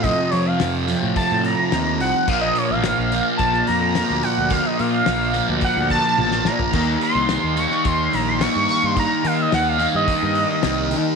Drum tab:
CC |----------------|x---------------|----------------|x---------------|
HH |o-o-o-o-o-o-o-o-|--o-o-o-o-o-o-o-|o-o-o-o-o-o-----|--o-o-o-o-o-o-o-|
SD |----o-------o---|----o----oo-o---|----o--------oo-|----o--o----o---|
T1 |----------------|----------------|------------o---|----------------|
FT |----------------|----------------|---------------o|----------------|
BD |o-------o-------|o-------o-------|o-------o-o-----|o-------o-------|

CC |----------------|
HH |o-o-o-o-o-o-o-o-|
SD |----o-------o---|
T1 |----------------|
FT |----------------|
BD |o-------o-------|